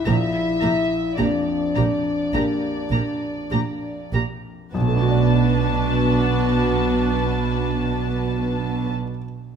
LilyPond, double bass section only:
\new Staff \with { instrumentName = "Double bass section" } { \clef bass \time 4/4 \key b \minor \tempo 4 = 50 ais,,8 ais,,8 ais,,8 ais,,8 ais,,8 ais,,8 ais,,8 ais,,8 | b,,1 | }